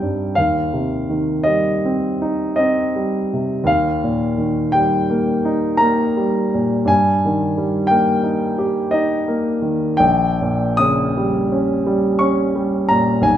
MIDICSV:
0, 0, Header, 1, 2, 480
1, 0, Start_track
1, 0, Tempo, 733496
1, 240, Time_signature, 9, 3, 24, 8
1, 2404, Tempo, 715990
1, 4324, Tempo, 685714
1, 6244, Tempo, 726392
1, 6724, Tempo, 807537
1, 7204, Tempo, 700117
1, 8959, End_track
2, 0, Start_track
2, 0, Title_t, "Grand piano"
2, 0, Program_c, 0, 0
2, 0, Control_c, 0, 64, 127
2, 0, Note_on_c, 0, 36, 41
2, 0, Note_on_c, 0, 55, 35
2, 0, Note_on_c, 0, 60, 35
2, 0, Note_on_c, 0, 63, 40
2, 0, Note_on_c, 0, 75, 63
2, 0, Note_on_c, 0, 79, 64
2, 14, Note_on_c, 0, 43, 34
2, 151, Note_off_c, 0, 55, 0
2, 218, Note_off_c, 0, 36, 0
2, 231, Note_on_c, 0, 77, 65
2, 237, Note_off_c, 0, 79, 0
2, 245, Note_off_c, 0, 43, 0
2, 248, Note_on_c, 0, 39, 42
2, 252, Control_c, 0, 64, 0
2, 253, Note_off_c, 0, 63, 0
2, 255, Note_off_c, 0, 60, 0
2, 257, Note_off_c, 0, 75, 0
2, 353, Control_c, 0, 64, 127
2, 481, Note_on_c, 0, 48, 33
2, 716, Note_on_c, 0, 51, 35
2, 856, Note_off_c, 0, 48, 0
2, 939, Note_on_c, 0, 75, 67
2, 947, Note_off_c, 0, 77, 0
2, 958, Note_on_c, 0, 55, 40
2, 1107, Note_off_c, 0, 51, 0
2, 1213, Note_on_c, 0, 60, 36
2, 1352, Note_off_c, 0, 55, 0
2, 1451, Note_on_c, 0, 63, 44
2, 1592, Note_off_c, 0, 60, 0
2, 1665, Note_off_c, 0, 75, 0
2, 1675, Note_on_c, 0, 75, 68
2, 1693, Note_on_c, 0, 60, 39
2, 1829, Note_off_c, 0, 63, 0
2, 1936, Note_on_c, 0, 55, 36
2, 2076, Note_off_c, 0, 60, 0
2, 2182, Note_on_c, 0, 48, 34
2, 2317, Note_off_c, 0, 55, 0
2, 2371, Note_off_c, 0, 39, 0
2, 2381, Note_on_c, 0, 39, 47
2, 2400, Note_off_c, 0, 75, 0
2, 2400, Note_on_c, 0, 77, 69
2, 2411, Note_off_c, 0, 48, 0
2, 2414, Control_c, 0, 64, 0
2, 2525, Control_c, 0, 64, 127
2, 2648, Note_on_c, 0, 46, 38
2, 2877, Note_on_c, 0, 51, 38
2, 3020, Note_off_c, 0, 46, 0
2, 3106, Note_on_c, 0, 79, 76
2, 3108, Note_off_c, 0, 77, 0
2, 3126, Note_on_c, 0, 55, 41
2, 3256, Note_off_c, 0, 51, 0
2, 3360, Note_on_c, 0, 58, 38
2, 3500, Note_off_c, 0, 55, 0
2, 3596, Note_on_c, 0, 63, 46
2, 3738, Note_off_c, 0, 58, 0
2, 3812, Note_on_c, 0, 82, 77
2, 3827, Note_off_c, 0, 79, 0
2, 3832, Note_on_c, 0, 58, 42
2, 3980, Note_off_c, 0, 63, 0
2, 4078, Note_on_c, 0, 55, 43
2, 4226, Note_off_c, 0, 58, 0
2, 4327, Note_on_c, 0, 46, 37
2, 4477, Note_off_c, 0, 55, 0
2, 4534, Note_off_c, 0, 39, 0
2, 4546, Note_on_c, 0, 43, 47
2, 4561, Note_on_c, 0, 80, 75
2, 4565, Note_off_c, 0, 82, 0
2, 4576, Note_off_c, 0, 46, 0
2, 4586, Control_c, 0, 64, 0
2, 4696, Control_c, 0, 64, 127
2, 4822, Note_on_c, 0, 51, 40
2, 5051, Note_on_c, 0, 55, 40
2, 5189, Note_off_c, 0, 51, 0
2, 5257, Note_on_c, 0, 79, 77
2, 5271, Note_off_c, 0, 80, 0
2, 5278, Note_on_c, 0, 58, 46
2, 5423, Note_off_c, 0, 55, 0
2, 5511, Note_on_c, 0, 63, 40
2, 5661, Note_off_c, 0, 58, 0
2, 5757, Note_on_c, 0, 67, 48
2, 5901, Note_off_c, 0, 63, 0
2, 5985, Note_on_c, 0, 75, 67
2, 5991, Note_off_c, 0, 79, 0
2, 6003, Note_on_c, 0, 63, 41
2, 6146, Note_off_c, 0, 67, 0
2, 6235, Note_off_c, 0, 75, 0
2, 6242, Note_on_c, 0, 58, 44
2, 6382, Note_off_c, 0, 63, 0
2, 6468, Note_on_c, 0, 51, 39
2, 6619, Note_off_c, 0, 58, 0
2, 6683, Note_off_c, 0, 43, 0
2, 6700, Note_on_c, 0, 79, 79
2, 6718, Note_on_c, 0, 34, 57
2, 6720, Note_off_c, 0, 51, 0
2, 6734, Control_c, 0, 64, 0
2, 6858, Control_c, 0, 64, 127
2, 6965, Note_on_c, 0, 46, 42
2, 7179, Note_on_c, 0, 87, 84
2, 7192, Note_off_c, 0, 79, 0
2, 7192, Note_on_c, 0, 49, 43
2, 7354, Note_off_c, 0, 46, 0
2, 7450, Note_on_c, 0, 55, 47
2, 7594, Note_off_c, 0, 49, 0
2, 7689, Note_on_c, 0, 61, 42
2, 7838, Note_off_c, 0, 55, 0
2, 7924, Note_on_c, 0, 55, 52
2, 8073, Note_off_c, 0, 61, 0
2, 8146, Note_on_c, 0, 85, 67
2, 8157, Note_off_c, 0, 87, 0
2, 8159, Note_on_c, 0, 61, 46
2, 8308, Note_off_c, 0, 55, 0
2, 8397, Note_on_c, 0, 55, 46
2, 8544, Note_off_c, 0, 61, 0
2, 8624, Note_on_c, 0, 82, 77
2, 8632, Note_off_c, 0, 85, 0
2, 8643, Note_on_c, 0, 46, 42
2, 8782, Note_off_c, 0, 55, 0
2, 8847, Note_on_c, 0, 35, 54
2, 8852, Note_off_c, 0, 34, 0
2, 8859, Note_on_c, 0, 80, 79
2, 8872, Note_off_c, 0, 82, 0
2, 8881, Note_off_c, 0, 46, 0
2, 8894, Control_c, 0, 64, 0
2, 8959, Note_off_c, 0, 35, 0
2, 8959, Note_off_c, 0, 80, 0
2, 8959, End_track
0, 0, End_of_file